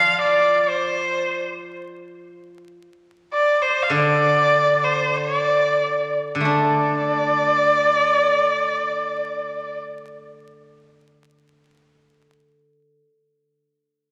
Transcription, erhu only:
Already playing: F5
0.21 D5
0.70 C5
3.33 D5
3.62 C5
3.83 F5
3.91 D5
4.84 C5
5.17 C#5
5.38 D5
6.47 D5

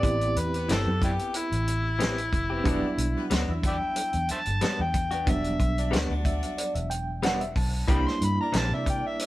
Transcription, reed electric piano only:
0.03 B3 C4 E4 G4
2.64 F#3 G3 B3 D4
5.26 F#3 G3 B3 D4
6.25 E5
6.58 D5
6.75 E5
6.90 G5
7.24 F#5
7.41 E5
7.57 A5
7.88 G3 A#3 D4 E4

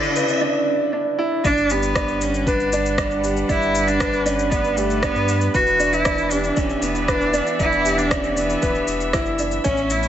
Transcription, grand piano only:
Already playing: D4 E4 B4 D5
0.16 B4
0.41 D4
0.93 D4
1.19 E4
1.45 D4
1.71 G4
1.96 D4
2.47 B4
2.73 D4
2.98 D4
3.23 G4
3.49 D4
4.01 B4
4.26 D4
4.51 D4
4.77 G4
5.03 D4
5.54 B4
5.80 D4
6.06 D4
6.31 G4
6.56 D4
7.08 B4
7.33 D4
7.59 D4
7.85 G4
8.11 D4
8.62 B4
9.14 E4
9.39 D4
9.64 C#4

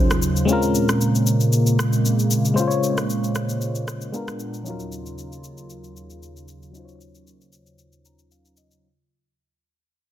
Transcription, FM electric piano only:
Already playing: F#3 C#4 D#4 F4 G#4 C5
0.45 G#3 C4 C#4
0.51 F4 A#4
2.54 G#3 C#4 C5
2.59 F4 C5
2.67 C#5
4.12 G#3 B3 D4 F4 A#4
4.63 F3 C#4 D#4
4.68 F#3 F4 A#4
6.71 F#3 C#4 D#4
6.77 F4 C5
6.85 C#5
8.05 A#5
8.31 F5
8.58 D#5

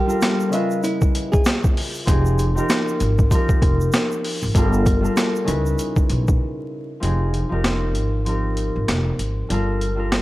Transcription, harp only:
Already playing: C4
0.06 G3 D4 F4 A4
0.10 A#4
0.49 C#3 C#4 D#5 E5
0.53 B4
2.05 F3 C4 D#4 G4
2.09 G#4
2.54 F3 C4 D#4 G4
2.59 A#4
3.30 F3 C4 D#4 G4
3.34 A#4
4.54 G3 D4 F4 A4
4.58 A#4
5.00 G3 D4 F4 A4
5.04 A#4
5.44 C#3 C#4 D#4 E4
5.48 B4
7.00 F3 C4 D#4 G4
7.04 G#4
7.49 F3 C4 D#4 G4
7.53 A#4
8.25 F3 C4 D#4 G4
8.29 A#4
9.49 G3 D4 F4 A4
9.53 A#4
9.95 G3 D4 F4 A4
9.99 A#4

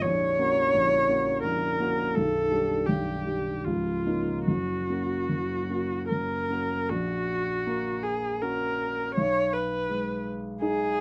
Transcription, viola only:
0.02 C#5
1.43 A#4
2.15 A4
2.86 G4
3.64 F4
4.47 F#4
6.09 A#4
6.89 F#4
8.03 G#4
8.41 A#4
9.15 C#5
9.53 B4
10.62 G#4

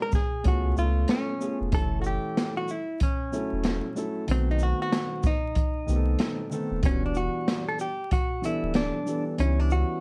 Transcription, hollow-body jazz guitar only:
0.02 A#4
0.15 G#4
0.48 F#4
0.79 F4
1.10 C#4
1.75 A4
2.02 F#4
2.07 G4
2.57 F#4
2.71 E4
3.03 C#4
4.31 C4
4.51 D#4
4.63 F#4
4.82 F#4
5.27 D#4
6.86 C#4
7.06 D4
7.17 F#4
7.68 A4
7.81 G4
8.13 F#4
8.45 E4
8.76 D4
9.40 C#4
9.60 D4
9.72 F#4

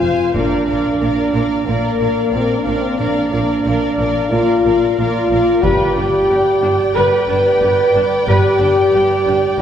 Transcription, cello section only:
0.02 F2
0.35 A#2
0.68 A#2
1.01 A#2
1.34 A#2
1.67 A#2
2.00 A#2
2.33 A#2
2.66 A#2
2.99 A#2
3.32 A#2
3.65 A#2
3.99 A#2
4.31 A#2
4.65 A#2
4.98 A#2
5.31 A#2
5.64 G2
5.97 G2
6.30 G2
6.63 G2
6.96 G2
7.29 G2
7.62 G2
7.95 G2
8.28 G2
8.60 G2
8.94 G2
9.26 G2

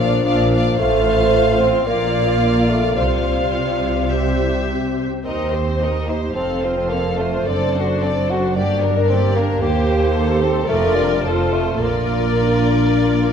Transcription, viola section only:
0.00 D4
0.26 D4
0.52 D4
0.79 F4
1.87 F4
2.96 F4
4.12 G4
5.25 D#4
5.52 G4
5.81 D#4
6.09 G4
6.36 C4
6.62 F4
6.90 C4
7.19 F4
7.48 C4
7.75 D4
8.03 C4
8.29 D4
8.55 A#3
8.83 D4
9.10 A#3
9.36 D4
9.62 G4
10.69 F4
11.25 F4
11.83 F4

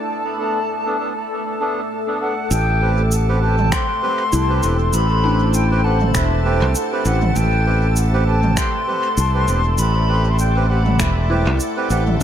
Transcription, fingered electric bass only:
2.51 A1
4.33 C2
4.63 E1
4.93 A1
6.15 E1
6.62 C2
7.05 A1
7.36 A1
9.17 C2
9.48 E1
9.78 A1
11.00 E1
11.47 C2
11.90 A1

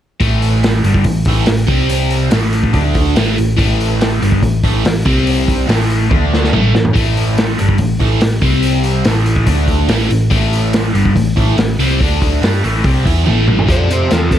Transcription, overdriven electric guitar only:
0.20 A2 E3 A3
0.85 G2 D3 G3
1.05 A2 E3
1.27 A2 E3 A3
1.47 A2 E3
1.67 C3 G3 C4
2.31 A2 E3 A3
2.73 D3 A3 D4
3.16 A2 E3 A3
3.37 A2 E3
3.56 A2 E3 A3
4.21 G2 D3 G3
4.42 A2 E3
4.63 A2 E3 A3
4.84 A2 E3
5.05 C3 G3 C4
5.67 A2 E3 A3
6.10 D3 A3 D4
6.52 A2 E3 A3
6.74 A2 E3
6.93 A2 E3 A3
7.58 G2 D3 G3
7.79 A2 E3
8.00 A2 E3 A3
8.21 A2 E3
8.42 C3 G3 C4
9.06 A2 E3 A3
9.47 D3 A3 D4
9.88 A2 E3 A3
10.09 A2 E3
10.30 A2 E3 A3
10.94 G2 D3 G3
11.15 A2 E3
11.36 A2 E3 A3
11.57 A2 E3
11.80 C3 G3 C4
12.01 D3 A3 D4
12.42 G3 D4 G4
12.63 A2 E3 A3
12.85 C3 G3 C4
13.05 E3 B3 E4
13.25 A2 E3 A3
13.66 F2 C3 F3
13.88 F2 C3 F3
14.09 F2 C3 F3
14.30 F2 C3 F3

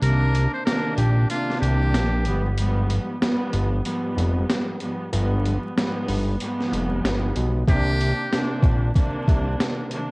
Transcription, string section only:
0.01 C3 D#3 A#3 D4
0.65 C3 D#3 A#3 D4
1.29 C3 D#3 A#3 D4
2.24 G#2 F3 G3 B3
2.57 G#2 F3 G3 B3
3.20 G#2 F3 G3 B3
3.83 G#2 F3 G3 B3
4.80 G#2 F3 G3 B3
5.11 G#2 F3 G3 B3
5.75 G#2 F3 G3 B3
6.39 G#2 F3 G3 B3
7.66 C3 D#3 A#3 D4
8.31 C3 D#3 A#3 D4
8.94 C3 D#3 A#3 D4
9.90 C3 D#3 A#3 D4

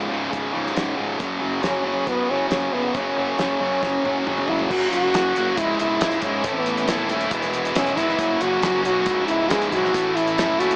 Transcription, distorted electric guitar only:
Already playing: C#3
0.10 C#2 G#2 C#3
0.31 C#2 G#2 C#3
0.53 C#2 G#2 C#3
0.75 C#2 G#2 C#3
0.96 C#2 G#2 C#3
1.19 F#2 C#3 F#3
1.40 F#2 C#3 F#3
1.62 F#2 C#3 F#3
1.84 F#2 C#3 F#3
2.07 F#2 C#3 F#3
2.29 F#2 C#3 F#3
2.51 F#2 C#3 F#3
2.74 F#2 C#3 F#3
2.96 F#2 C#3 F#3
3.17 F#2 C#3 F#3
3.39 F#2 C#3 F#3
3.60 F#2 C#3 F#3
3.82 F#2 C#3 F#3
4.05 F#2 C#3 F#3
4.27 F#2 C#3 F#3
4.50 F#2 C#3 F#3
4.70 F#2 C#3 F#3 A#3 C#4 F#4
5.15 F#3 A#3 C#4 F#4
5.38 F#3 A#3 C#4 F#4
5.59 C#2 G#2 C#3 G#3 E4
6.02 G#2 C#3 G#3 E4
6.25 C#3 G#3 E4
6.45 A2 E3 A3 C#4 E4 A4
6.88 A3 C#4 E4 A4
7.10 A3 C#4 E4 A4
7.32 E2 B2 E3 G#3 B3 E4
7.75 E3 G#3 B3 E4
7.98 E3 G#3 B3 E4
8.19 F#2 C#3 F#3 A#3 C#4 F#4
8.64 F#3 A#3 C#4 F#4
8.85 F#3 A#3 C#4 F#4
9.06 C#2 G#2 C#3 G#3 E4
9.49 G#2 C#3 G#3 E4
9.71 C#3 G#3 E4
9.94 A2 E3 A3 C#4 E4 A4
10.37 A3 C#4 E4 A4
10.59 A3 C#4 E4 A4

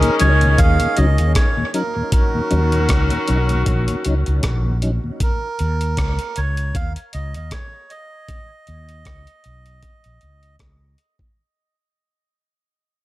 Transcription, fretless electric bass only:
0.21 C#2
0.59 D#2
0.98 C#2
1.20 D#2
2.52 D#2
2.90 C#2
3.30 B1
3.67 A#1
4.06 C#2
4.28 C#2
4.44 A#1
5.60 D#2
5.98 C#2
6.38 C#2
7.15 C#2
8.69 D#2
9.07 C#2
9.46 B1
10.06 A#1
10.23 C#2
10.61 C#2

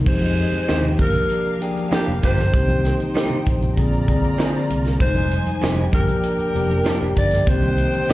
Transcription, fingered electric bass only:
0.07 F2
0.54 muted fingered electric bass stroke
0.69 D#2
1.00 G1
2.08 F1
2.24 G1
2.54 C2
3.01 muted fingered electric bass stroke
3.47 A#1
3.78 A#1
4.09 C2
4.70 C2
5.01 F1
5.48 muted fingered electric bass stroke
5.63 F1
5.94 G1
6.39 muted fingered electric bass stroke
6.55 F1
7.01 F1
7.17 G1
7.47 C2
7.95 muted fingered electric bass stroke
8.09 C2

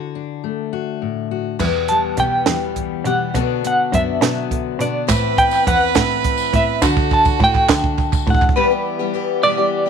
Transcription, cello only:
1.60 E2
2.18 B2
2.47 E2
3.05 B2
3.35 B2
3.93 F#2
4.22 B2
4.79 B2
5.09 A2
5.67 E2
5.96 A2
6.53 A2
6.82 D3
7.40 A2
7.69 D3
8.27 A2

